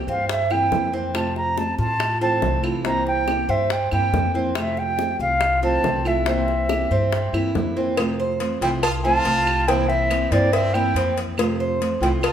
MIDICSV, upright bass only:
0, 0, Header, 1, 2, 480
1, 0, Start_track
1, 0, Key_signature, -1, "major"
1, 0, Tempo, 426439
1, 1285, Time_signature, 4, 2, 24, 8
1, 13873, End_track
2, 0, Start_track
2, 0, Title_t, "Upright bass"
2, 0, Program_c, 0, 32
2, 79, Note_on_c, 0, 43, 85
2, 757, Note_off_c, 0, 43, 0
2, 803, Note_on_c, 0, 41, 82
2, 1936, Note_off_c, 0, 41, 0
2, 2010, Note_on_c, 0, 45, 88
2, 2683, Note_off_c, 0, 45, 0
2, 2725, Note_on_c, 0, 36, 85
2, 3858, Note_off_c, 0, 36, 0
2, 3924, Note_on_c, 0, 43, 85
2, 4373, Note_off_c, 0, 43, 0
2, 4415, Note_on_c, 0, 43, 75
2, 4636, Note_off_c, 0, 43, 0
2, 4646, Note_on_c, 0, 41, 85
2, 5781, Note_off_c, 0, 41, 0
2, 5846, Note_on_c, 0, 36, 87
2, 6525, Note_off_c, 0, 36, 0
2, 6561, Note_on_c, 0, 36, 83
2, 7699, Note_off_c, 0, 36, 0
2, 7775, Note_on_c, 0, 43, 87
2, 8221, Note_off_c, 0, 43, 0
2, 8250, Note_on_c, 0, 43, 68
2, 8475, Note_off_c, 0, 43, 0
2, 8499, Note_on_c, 0, 41, 76
2, 9628, Note_off_c, 0, 41, 0
2, 9696, Note_on_c, 0, 36, 90
2, 10370, Note_off_c, 0, 36, 0
2, 10410, Note_on_c, 0, 36, 83
2, 11541, Note_off_c, 0, 36, 0
2, 11608, Note_on_c, 0, 43, 94
2, 12284, Note_off_c, 0, 43, 0
2, 12319, Note_on_c, 0, 41, 91
2, 13454, Note_off_c, 0, 41, 0
2, 13513, Note_on_c, 0, 36, 89
2, 13873, Note_off_c, 0, 36, 0
2, 13873, End_track
0, 0, End_of_file